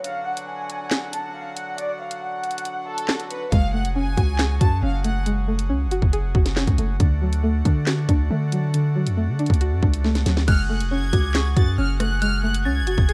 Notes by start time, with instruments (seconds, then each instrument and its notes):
Already playing: accordion F#3
0.04 accordion D3 F#4, violin section F5, closed hi-hat
0.26 violin section F#5
0.37 closed hi-hat
0.48 violin section G#5
0.70 closed hi-hat
0.91 snare, clap, closed hi-hat
1.13 violin section A5, closed hi-hat
1.35 violin section F5
1.56 violin section F#5, closed hi-hat
1.78 violin section D5, closed hi-hat
2.00 violin section F5
2.11 closed hi-hat
2.22 violin section F#5
2.44 closed hi-hat
2.51 closed hi-hat
2.58 closed hi-hat
2.65 closed hi-hat
2.87 violin section A4
2.98 closed hi-hat
3.08 snare, clap
3.20 closed hi-hat
3.31 violin section B4, closed hi-hat
3.52 808-style bass F#1, synth pluck G#3, accordion G#4, violin section F5, kick, closed hi-hat
3.74 synth pluck A3, violin section F#5
3.85 808-style bass F1, closed hi-hat
3.96 synth pluck C#4, violin section G#5
4.01 808-style bass F#1
4.17 808-style bass C#2, synth pluck F#4, kick, closed hi-hat
4.39 synth pluck G#4, snare, clap, closed hi-hat
4.61 808-style bass F#2, synth pluck F#4, violin section A5, kick, closed hi-hat
4.83 808-style bass F#1, synth pluck C#4, violin section F5
5.04 synth pluck A3, violin section F#5, closed hi-hat
5.26 synth pluck G#3, closed hi-hat
5.48 synth pluck A3
5.59 closed hi-hat
5.70 808-style bass C#2, synth pluck C#4
5.86 808-style bass F#1
5.91 synth pluck F#4, closed hi-hat
6.02 808-style bass F#1, kick
6.13 synth pluck G#4, closed hi-hat
6.24 808-style bass F1
6.35 808-style bass F#1, synth pluck F#4, kick
6.46 snare, closed hi-hat
6.56 808-style bass F1, synth pluck C#4, snare, clap
6.67 808-style bass C#2, kick, closed hi-hat
6.78 808-style bass F#1, synth pluck A3, closed hi-hat
7.00 808-style bass D2, synth pluck D3, accordion A3 D4, kick, closed hi-hat
7.22 synth pluck F#3
7.33 closed hi-hat
7.43 synth pluck A3
7.65 808-style bass D3, synth pluck D4, kick, closed hi-hat
7.86 synth pluck F#4, snare, clap, closed hi-hat
8.09 808-style bass D2, synth pluck D4, kick, closed hi-hat
8.31 808-style bass D3, synth pluck A3
8.52 synth pluck F#3, closed hi-hat
8.74 synth pluck D3, closed hi-hat
8.96 synth pluck F#3
9.07 808-style bass F2, closed hi-hat
9.17 synth pluck A3
9.28 808-style bass D3
9.39 synth pluck D4, closed hi-hat
9.46 808-style bass D2, kick, closed hi-hat
9.54 closed hi-hat
9.61 synth pluck F#4, closed hi-hat
9.72 808-style bass F#2
9.83 808-style bass C#2, synth pluck D4, kick
9.94 closed hi-hat
10.04 synth pluck A3, snare
10.15 snare, closed hi-hat
10.26 808-style bass D2, synth pluck F#3, snare, closed hi-hat
10.37 snare
10.48 808-style bass F#1, synth pluck G#3, accordion F#4 G#4 F#5, violin section F6, synth bell F#6, kick, closed hi-hat, crash
10.69 synth pluck A3, violin section F#6
10.80 808-style bass F1, closed hi-hat
10.91 synth pluck C#4, violin section G#6
10.97 808-style bass F#1
11.13 808-style bass C#2, synth pluck F#4, synth bell D6, kick, closed hi-hat
11.34 synth pluck G#4, synth bell C#6, snare, clap, closed hi-hat
11.56 808-style bass F#2, synth pluck F#4, violin section A6, kick, closed hi-hat
11.78 808-style bass F#1, synth pluck C#4, synth bell F6, violin section F6
12.00 synth pluck A3, violin section F#6, synth bell F#6, cross-stick, closed hi-hat
12.22 synth pluck G#3, violin section F6, synth bell F#6, closed hi-hat
12.43 synth pluck A3, violin section F#6
12.54 closed hi-hat
12.65 808-style bass C#2, synth pluck C#4, violin section G#6, synth bell A6
12.82 808-style bass F#1
12.87 synth pluck F#4, closed hi-hat
12.98 808-style bass F#1, kick
13.09 synth pluck G#4, synth bell G#6, closed hi-hat